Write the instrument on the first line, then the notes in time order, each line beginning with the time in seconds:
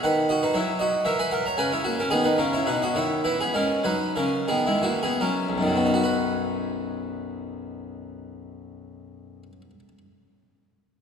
harpsichord
0.03 D#3 B4 F#5
0.29 F#4 D#5
0.43 D#4 B4
0.54 F#3 E4 C#5
0.79 F#4 D#5
1.05 E3 A#4 E5
1.19 B4 G#5
1.31 A#4 F#5
1.46 C#5 A#5
1.57 C#3 B4 G#5
1.72 E4 C#5
1.84 A#3 F#4
1.99 C#4 A#4
2.10 D#3 B3 G#4
2.24 D#4 B4
2.38 C#3 C#4 A#4
2.53 E4 C#5
2.66 B2 D#4 B4
2.82 F#4 D#5
2.95 D#3 E4 C#5
3.24 E3 E4 B4
3.40 B3 G#4
3.54 G#3 C#4 A#4
3.84 F#3 D#4 B4
4.16 C#3 C#4 A#4
4.48 D#3 B3 G#4
4.66 G#3 E4
4.82 E3 A#3 F#4
5.03 B3 G#4
5.20 F#3 C#4 A#4
5.49 B1
5.58 F#2 D#3
5.67 F#3
5.76 B3
5.85 D#4
5.94 F#4
6.04 B4